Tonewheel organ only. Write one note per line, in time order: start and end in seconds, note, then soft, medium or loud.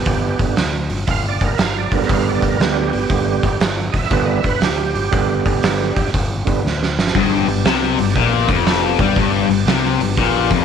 0.00 0.40 B3 medium
0.00 0.38 G4 loud
0.41 0.56 D3 soft
0.41 0.56 G3 soft
0.41 0.56 B3 soft
1.07 1.10 E5 medium
1.07 1.26 F5 loud
1.28 1.43 D5 medium
1.44 1.59 A#4 medium
1.58 1.61 E5 medium
1.62 1.77 F5 loud
1.78 1.93 D5 medium
1.92 2.57 D3 medium
1.92 2.57 G3 soft
1.92 2.58 B3 medium
1.92 2.10 A#4 medium
2.07 2.11 E5 medium
2.12 2.27 F5 loud
2.29 2.44 D5 medium
2.45 2.60 A#4 medium
2.61 2.90 D3 soft
2.61 2.91 G3 soft
2.61 3.11 B3 medium
2.61 3.60 G4 loud
3.11 3.49 D3 medium
3.11 3.49 G3 medium
3.11 3.49 B3 medium
3.92 3.97 D#5 medium
3.97 4.12 E5 loud
4.11 4.41 D3 soft
4.11 4.42 G3 soft
4.11 4.42 B3 medium
4.11 4.29 B4 medium
4.24 4.31 D#5 medium
4.29 4.45 E5 loud
4.46 4.62 B4 loud
4.64 6.11 G4 loud
5.11 5.92 D3 medium
5.11 5.92 G3 medium
5.11 5.93 B3 medium
6.45 6.62 D3 medium
6.45 6.62 G3 soft
6.45 6.63 B3 medium
7.14 7.31 C4 medium
7.14 7.32 D#4 medium
7.14 7.31 G#4 medium
7.32 10.65 B3 medium
7.32 10.65 D4 medium
7.32 10.65 G4 medium